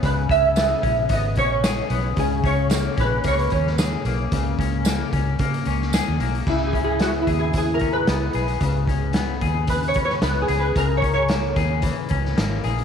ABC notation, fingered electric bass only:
X:1
M:4/4
L:1/16
Q:"Swing 16ths" 1/4=112
K:C#dor
V:1 name="Fingered electric bass" clef=bass
C,,2 C,,4 A,,,2 G,,,2 A,,,4 B,,,2 | C,,2 C,,4 A,,,2 C,,2 D,,4 B,,,2 | C,,2 C,,4 C,,2 C,2 C,,3 D,, B,,,2 | C,,6 D,,6 C,,2 B,,,2 |
C,,6 D,,6 C,,2 C,,2 | C,,6 D,,3 z C,,2 G,,,2 A,,,2 |]